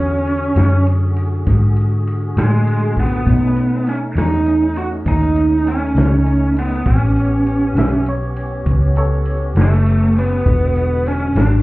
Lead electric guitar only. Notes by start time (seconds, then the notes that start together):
Already playing: C#4
2.39 G#3
3.00 B3
3.89 C#4
4.19 D#4
4.78 F#4
5.08 D#4
5.68 C#4
6.59 B3
6.88 C#4
9.62 A3
10.19 B3
11.08 C#4
11.37 D4